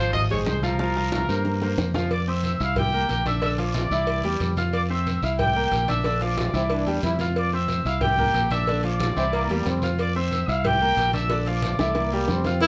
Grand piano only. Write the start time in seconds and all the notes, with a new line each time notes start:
Already playing: F3
0.00 F4 F5
0.31 G#3 G#4 C5
0.63 F3 F4 F5
0.79 F3 F4 F5
0.96 F3 F4 F5
1.29 A#3 A#4 C5
1.62 A#3 A#4 C5
1.95 F3 F4 F5
2.28 C4 C5 C6
2.61 E4 E5 E6
2.94 A#3 A#4 A#5
3.26 D4 D5 D6
3.42 D3 D4 D5
3.58 F3 F4 F5
3.92 E3 E4 E5
4.24 G3 G4 G5
4.57 F4 F5 F6
4.90 C4 C5 C6
5.23 E4 E5 E6
5.56 A#3 A#4 A#5
5.88 D4 D5 D6
6.05 D3 D4 D5
6.21 F3 F4 F5
6.54 E3 E4 E5
6.87 G3 G4 G5
7.20 F4 F5 F6
7.53 C4 C5 C6
7.86 E4 E5 E6
8.19 A#3 A#4 A#5
8.51 D4 D5 D6
8.69 D3 D4 D5
8.84 F3 F4 F5
9.17 E3 E4 E5
9.51 G3 G4 G5
9.83 F4 F5 F6
10.16 C4 C5 C6
10.49 E4 E5 E6
10.81 A#3 A#4 A#5
11.13 D4 D5 D6
11.31 D3 D4 D5
11.47 F3 F4 F5
11.80 E3 E4 E5
12.13 G3 G4 G5
12.46 F4 F5 F6